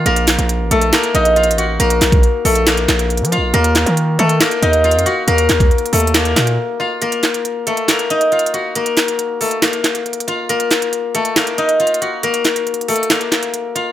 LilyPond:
<<
  \new Staff \with { instrumentName = "Guzheng" } { \time 4/4 \key ees \dorian \tempo 4 = 138 <bes bes'>4 r8 <a a'>8 <bes bes'>8 <ees' ees''>8 <f' f''>8 <ges' ges''>8 | <bes bes'>4 r8 <a a'>8 <bes bes'>4. <f' f''>8 | <bes bes'>4 r8 <a a'>8 <bes bes'>8 <ees' ees''>8 <f' f''>8 <ges' ges''>8 | <bes bes'>4 r8 <a a'>8 <bes bes'>4. <f' f''>8 |
<bes bes'>4 r8 <a a'>8 <bes bes'>8 <ees' ees''>8 <f' f''>8 <ges' ges''>8 | <bes bes'>4 r8 <a a'>8 <bes bes'>4. <f' f''>8 | <bes bes'>4 r8 <a a'>8 <bes bes'>8 <ees' ees''>8 <f' f''>8 <ges' ges''>8 | <bes bes'>4 r8 <a a'>8 <bes bes'>4. <f' f''>8 | }
  \new Staff \with { instrumentName = "808-style bass" } { \clef bass \time 4/4 \key ees \dorian bes,,8. bes,,8 a,,16 bes,,8 r8 bes,,8. a,,8. | bes,,8 bes,,8 r8 bes,,4 bes,,8. f16. bes,,16. | ees,8. ees8. ees8 r8 ees,8. f,16 r8 | ees,8 ees,8 r8 ees,4 bes,8 r4 |
r1 | r1 | r1 | r1 | }
  \new DrumStaff \with { instrumentName = "Drums" } \drummode { \time 4/4 hh16 hh16 <hc hh sn>16 hh16 hh8 hh16 hh16 <hc hh sn>16 hh16 hh16 hh16 \tuplet 3/2 { hh16 hh16 hh16 hh16 r16 r16 } | hh16 hh16 <hc hh sn>16 <hh bd>16 hh8 hho16 hh16 <hc hh sn>16 hh16 <hc hh sn>16 hh16 \tuplet 3/2 { hh16 hh16 hh16 hh16 r16 r16 } | hh16 hh16 <hc hh sn>16 hh16 hh8 hh16 hh16 <hc hh sn>16 hh16 hh16 hh16 \tuplet 3/2 { hh16 hh16 hh16 hh16 r16 r16 } | hh16 hh16 <hc hh sn>16 <hh bd>16 \tuplet 3/2 { hh16 hh16 hh16 <hh hho>16 hh16 hh16 } <hc hh sn>16 hh16 <hc hh sn>16 hh16 r4 |
hh16 hh16 <hc hh sn>16 hh16 hh8 hh16 hh16 <hc hh sn>16 hh16 hh16 hh16 \tuplet 3/2 { hh16 hh16 hh16 hh16 r16 r16 } | hh16 hh16 <hc hh sn>16 hh16 hh8 hho16 hh16 <hc hh sn>16 hh16 <hc hh sn>16 hh16 \tuplet 3/2 { hh16 hh16 hh16 hh16 r16 r16 } | hh16 hh16 <hc hh sn>16 hh16 hh8 hh16 hh16 <hc hh sn>16 hh16 hh16 hh16 \tuplet 3/2 { hh16 hh16 hh16 hh16 r16 r16 } | hh16 hh16 <hc hh sn>16 hh16 \tuplet 3/2 { hh16 hh16 hh16 <hh hho>16 hh16 hh16 } <hc hh sn>16 hh16 <hc hh sn>16 hh16 hh8 hh8 | }
>>